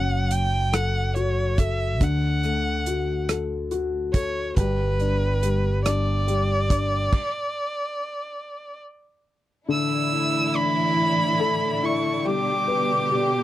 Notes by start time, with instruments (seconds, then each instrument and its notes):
Already playing: fingered electric bass F#1, grand piano F#3 C#4, violin F#5
0.31 violin G5, closed hi-hat
0.73 grand piano A4, violin F#5, cross-stick, closed hi-hat
1.14 grand piano F#4, violin C#5, closed hi-hat
1.58 grand piano A4, violin E5, kick, closed hi-hat
2.00 fingered electric bass D2, grand piano D3, violin F#5, kick, closed hi-hat
2.43 grand piano A3, cross-stick, closed hi-hat
2.86 grand piano F#4, closed hi-hat
3.29 grand piano A4, cross-stick, closed hi-hat
3.71 grand piano F#4, closed hi-hat
4.13 grand piano A4, violin C#5, kick, closed hi-hat
4.57 fingered electric bass G1, grand piano G3, violin B4, kick, closed hi-hat
5.00 grand piano D4, closed hi-hat
5.43 grand piano G3, closed hi-hat
5.84 grand piano D4, violin D5, cross-stick, closed hi-hat
6.27 grand piano G3, closed hi-hat
6.70 grand piano D4, kick, closed hi-hat
7.13 kick, crash
9.68 string section A2 D3 E3 D4 E4, grand piano D3, violin E6
10.12 grand piano E4
10.54 grand piano D4, violin B5
10.97 grand piano E4
11.39 grand piano A4
11.82 grand piano E4, violin C#6
12.23 string section B2 G3 G4, grand piano G3, violin D6
12.68 grand piano B4
13.09 grand piano G4